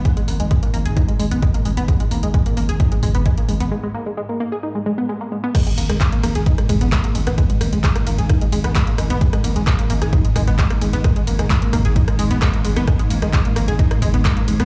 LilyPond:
<<
  \new Staff \with { instrumentName = "Synth arpeggio sound" } { \time 4/4 \key gis \minor \tempo 4 = 131 gis16 gis16 ais16 gis16 gis16 ais16 ais16 gis'16 dis'16 gis16 gis16 b16 gis16 ais16 gis16 b16 | gis16 gis16 ais16 gis16 gis16 ais16 ais16 gis'16 dis'16 gis16 gis16 b16 gis16 ais16 gis16 b16 | gis16 gis16 ais16 gis16 gis16 ais16 ais16 gis'16 dis'16 gis16 gis16 b16 gis16 ais16 gis16 b16 | gis16 gis16 ais16 gis16 gis16 ais16 ais16 gis'16 dis'16 gis16 gis16 b16 gis16 ais16 gis16 b16 |
gis16 gis16 ais16 gis16 gis16 ais16 ais16 gis'16 dis'16 gis16 gis16 b16 gis16 ais16 gis16 b16 | gis16 gis16 ais16 gis16 gis16 ais16 ais16 gis'16 dis'16 gis16 gis16 b16 gis16 ais16 gis16 b16 | gis16 gis16 ais16 gis16 gis16 ais16 ais16 gis'16 dis'16 gis16 gis16 b16 gis16 ais16 gis16 b16 | gis16 gis16 ais16 gis16 gis16 ais16 ais16 gis'16 dis'16 gis16 gis16 b16 gis16 ais16 gis16 b16 | }
  \new Staff \with { instrumentName = "Synth drone" } { \clef bass \time 4/4 \key gis \minor <gis, gis>1~ | <gis, gis>1 | r1 | <gis, gis>1~ |
<gis, gis>1~ | <gis, gis>1~ | <gis, gis>1~ | <gis, gis>1 | }
  \new Staff \with { instrumentName = "808-style bass" } { \clef bass \time 4/4 \key gis \minor r16 gis,,16 gis,,16 gis,,16 r16 gis,,16 gis,,16 gis,,16 r16 gis,,16 gis,,16 gis,,16 r16 gis,,16 gis,,16 gis,,16 | r16 gis,,16 gis,,16 gis,,16 r16 gis,,16 gis,,16 gis,,16 r16 gis,,16 gis,,16 gis,,16 r16 gis,,16 gis,,16 gis,,16 | r1 | r16 gis,,16 gis,,16 gis,,16 r16 gis,,16 gis,,16 gis,,16 r16 gis,,16 gis,,16 gis,,16 r16 gis,,16 gis,,16 gis,,16 |
r16 gis,,16 gis,,16 gis,,16 r16 gis,,16 gis,,16 gis,,16 r16 gis,,16 gis,,16 gis,,16 r16 gis,,16 gis,,16 gis,,16 | r16 gis,,16 gis,,16 gis,,16 r16 gis,,16 gis,,16 gis,,16 r16 gis,,16 gis,,16 gis,,16 r16 gis,,16 gis,,16 gis,,16 | r16 gis,,16 gis,,16 gis,,16 r16 gis,,16 gis,,16 gis,,16 r16 gis,,16 gis,,16 gis,,16 r16 gis,,16 gis,,16 gis,,16 | r16 gis,,16 gis,,16 gis,,16 r16 gis,,16 gis,,16 gis,,16 r16 gis,,16 gis,,16 gis,,16 r16 gis,,16 gis,,16 gis,,16 | }
  \new DrumStaff \with { instrumentName = "Drums" } \drummode { \time 4/4 <hh bd>16 hh16 hho16 hh16 <hh bd>16 hh16 hho16 hh16 <hh bd>16 hh16 hho16 hh16 <hh bd>16 hh16 hho16 hh16 | <hh bd>16 hh16 hho16 hh16 <hh bd>16 hh16 hho16 hh16 <hh bd>16 hh16 <hho bd>16 hh16 <hh bd>16 hh16 hho16 hh16 | r4 r4 r4 r4 | <cymc hh bd cymr ss>16 hh16 <hho cymr>16 <hh ss>16 <hc hh bd cymr>16 hh16 <hho cymr ss>16 hh16 <hh bd cymr>16 <hh ss>16 <hho bd cymr>16 hh16 <hc hh bd cymr ss>16 hh16 <hho cymr>16 <hh ss>16 |
<hh bd cymr>16 hh16 <hho cymr ss>16 hh16 <hc hh bd cymr>16 <hh ss>16 <hho cymr>16 hh16 <hh bd cymr ss>16 hh16 <hho cymr>16 <hh ss>16 <hc hh bd cymr>16 hh16 <hho cymr ss>16 hh16 | <hh bd cymr>16 <hh ss>16 <hho cymr>16 hh16 <hc hh bd cymr ss>16 hh16 <hho cymr>16 <hh ss>16 <hh bd cymr>16 hh16 <hho bd cymr ss>16 hh16 <hc hh bd cymr>16 <hh ss>16 <hho cymr>16 hh16 | <hh bd cymr ss>16 hh16 <hho cymr>16 <hh ss>16 <hc hh bd cymr>16 hh16 <hho bd cymr ss>16 hh16 <hh bd cymr>16 <hh ss>16 <hho cymr>16 hh16 <hc hh bd cymr ss>16 hh16 <hho cymr>16 <hh ss>16 | <hh bd cymr ss>16 hh16 <hho cymr>16 <hh ss>16 <hc hh bd cymr>16 hh16 <hho cymr ss>16 hh16 <hh bd cymr>16 <hh ss>16 <hho bd cymr>16 hh16 <hc hh bd cymr ss>16 hh16 <hho cymr>16 <hh ss>16 | }
>>